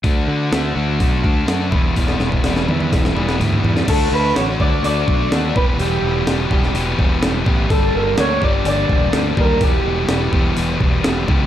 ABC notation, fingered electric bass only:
X:1
M:4/4
L:1/8
Q:1/4=126
K:D
V:1 name="Fingered electric bass" clef=bass
D,, D, D,, D,, B,,, D,, F,, E,,, | E,,, E,,, E,,, E,, E,,, E,,, D,, E,, | D,, D,, A,,, D,, D,, B,,, _E,, =E,,, | E,,, E,,, E,,, E,,, E,,, E,,, E,,, A,,, |
G,,, G,,, D,, G,,, G,,, E,,, D,, _E,, | E,,, E,,, E,,, E,,, E,,, E,,, E,,, C,, |]